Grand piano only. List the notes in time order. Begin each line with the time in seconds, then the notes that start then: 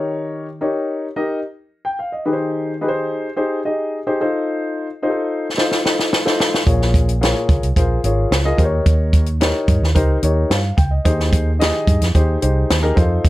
Already playing: D#3 D#4 G4 A#4 C#5
0.61 D#4 G4 A#4 C#5
1.16 D#4 G4 A#4 D#5
1.85 G5
1.99 F5
2.12 D#5
2.25 D#3 D#4 G4 G#4 B4
2.33 C5
2.81 D#4 G4 G#4 B4
2.88 C5
3.36 D#4 G4 G#4 C5
3.65 D#4 G4 G#4 D#5
4.07 D#4 G4 G#4 C5
4.21 D#4 F4 A4 C5
5.02 D#4 F4 G4 C5
5.10 A4
5.57 D#4 F4 A4 C5
5.84 D#4 F4 A4 C5
6.25 D#4 F4 A4 C5
6.66 A#2 F4 G#4 A#4 C#5
7.21 F4 G#4 A#4 C#5
7.76 F4 G#4 A#4 C5
8.04 F4 G#4 A#4 C#5
8.45 F4 G#4 A#4 D#5
8.57 D#3 D#4 G4 A#4 C5
8.64 C#5
9.40 D#4 G4 A#4 C#5
9.95 D#4 G4 A#4 C5
10.23 D#4 G4 A#4 C#5
10.49 F5
10.77 G5
10.91 D#5
11.05 D#3 D#4 G4 G#4 C5
11.59 D#4 G4 G#4 D#5
12.14 D#4 G4 G#4 C5
12.42 D#4 G4 G#4 C5
12.82 D#4 G4 G#4 A#4
12.96 D#4 F4 A4 C5